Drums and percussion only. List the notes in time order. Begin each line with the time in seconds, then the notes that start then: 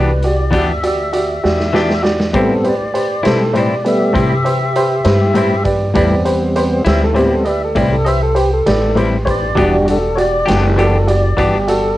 0.23 closed hi-hat
0.53 kick, closed hi-hat
0.83 closed hi-hat
1.13 closed hi-hat
1.45 snare
1.60 snare
1.75 snare
1.90 snare
2.05 snare
2.20 snare
2.34 kick, closed hi-hat
2.64 closed hi-hat
2.95 closed hi-hat
3.25 snare, closed hi-hat
3.56 closed hi-hat
3.86 closed hi-hat
4.15 kick, closed hi-hat
4.46 closed hi-hat
4.76 closed hi-hat
5.05 snare, closed hi-hat
5.35 closed hi-hat
5.65 kick, closed hi-hat
5.95 kick, closed hi-hat
6.25 closed hi-hat
6.56 closed hi-hat
6.86 snare, closed hi-hat
7.16 closed hi-hat
7.45 closed hi-hat
7.76 kick, closed hi-hat
8.06 closed hi-hat
8.36 closed hi-hat
8.67 snare, closed hi-hat
8.97 closed hi-hat
9.27 kick, closed hi-hat
9.57 kick, closed hi-hat
9.88 closed hi-hat
10.18 closed hi-hat
10.48 snare, closed hi-hat
10.79 closed hi-hat
11.08 closed hi-hat
11.38 kick, closed hi-hat
11.68 closed hi-hat